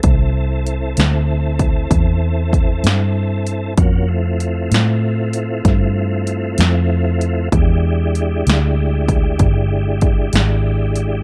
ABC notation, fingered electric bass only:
X:1
M:12/8
L:1/8
Q:3/8=64
K:Am
V:1 name="Fingered electric bass" clef=bass
C,,3 D,,3 E,,3 G,,3 | F,,3 A,,3 G,,3 F,,3 | E,,3 D,,3 G,,,3 ^G,,,3 |]